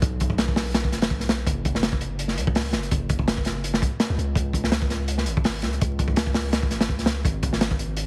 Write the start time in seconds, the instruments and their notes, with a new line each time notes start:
0.02 808-style bass B1, kick, closed hi-hat
0.20 kick, closed hi-hat
0.30 kick
0.38 snare, closed hi-hat
0.48 kick
0.56 snare, open hi-hat
0.74 snare, closed hi-hat
0.84 kick
0.92 808-style bass F#1, snare, closed hi-hat
1.02 snare, closed hi-hat
1.10 808-style bass B1, kick
1.20 snare, closed hi-hat
1.29 snare, closed hi-hat
1.47 808-style bass F#1, kick, closed hi-hat
1.65 kick, closed hi-hat
1.75 snare
1.83 snare, closed hi-hat
1.92 kick
2.01 closed hi-hat
2.19 closed hi-hat
2.28 snare
2.37 808-style bass C#2, closed hi-hat
2.47 kick
2.55 snare, open hi-hat
2.73 808-style bass F#1, snare, closed hi-hat
2.83 closed hi-hat
2.91 808-style bass F#1, kick, closed hi-hat
3.09 kick, closed hi-hat
3.19 kick
3.28 snare, closed hi-hat
3.37 kick
3.45 snare, closed hi-hat
3.64 closed hi-hat
3.74 snare
3.82 808-style bass C#2, kick, closed hi-hat
4.00 snare, closed hi-hat
4.10 808-style bass C#2
4.18 808-style bass C#2, closed hi-hat
4.35 808-style bass C#2, kick, closed hi-hat
4.53 kick, closed hi-hat
4.64 snare
4.72 snare, closed hi-hat
4.82 kick
4.90 snare, closed hi-hat
5.08 closed hi-hat
5.18 snare
5.26 808-style bass G#1, closed hi-hat
5.37 kick
5.44 snare, open hi-hat
5.62 808-style bass C#2, snare, closed hi-hat
5.73 closed hi-hat
5.81 808-style bass C#2, kick, closed hi-hat
5.99 kick, closed hi-hat
6.08 kick
6.16 snare, closed hi-hat
6.26 kick
6.34 snare, open hi-hat
6.53 snare, closed hi-hat
6.63 kick
6.71 808-style bass G#1, snare, closed hi-hat
6.81 snare, closed hi-hat
6.89 808-style bass C#2, kick
6.99 snare, closed hi-hat
7.06 snare, closed hi-hat
7.25 808-style bass G#1, kick, closed hi-hat
7.43 kick, closed hi-hat
7.53 snare
7.61 snare, closed hi-hat
7.71 kick
7.79 closed hi-hat
7.97 closed hi-hat